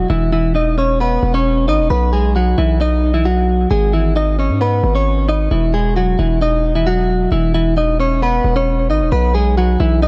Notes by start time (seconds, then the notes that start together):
0.10 E1 E3 E4
0.32 E3 E4
0.55 D#4 D#5
0.78 C#4 C#5
1.00 B3 B4
1.23 E1
1.34 C#4 C#5
1.68 G#1 D#4 D#5
1.79 E1
1.90 B1 B3 B4
2.13 G#3 G#4
2.36 F#3 F#4
2.58 B1 E3 E4
2.81 D#4 D#5
3.14 E3 E4
3.25 F#3 F#4
3.71 G#1 G#3 G#4
3.93 E3 E4
4.16 D#4 D#5
4.39 C#4 C#5
4.50 G#2
4.61 B3 B4
4.84 G#1
4.95 C#4 C#5
5.29 D#4 D#5
5.51 E1 E3 E4
5.74 G#3 G#4
5.96 F#3 F#4
6.19 E1 E3 E4
6.41 D#4 D#5
6.75 E3 E4
6.87 F#3 F#4
7.32 E1 E3 E4
7.54 E3 E4
7.77 D#4 D#5
8.00 C#4 C#5
8.22 B3 B4
8.44 E1
8.56 C#4 C#5
8.90 G#1 D#4 D#5
9.01 E1
9.12 B1 B3 B4
9.35 G#3 G#4
9.57 F#3 F#4
9.80 B1 E3 E4
10.02 D#4 D#5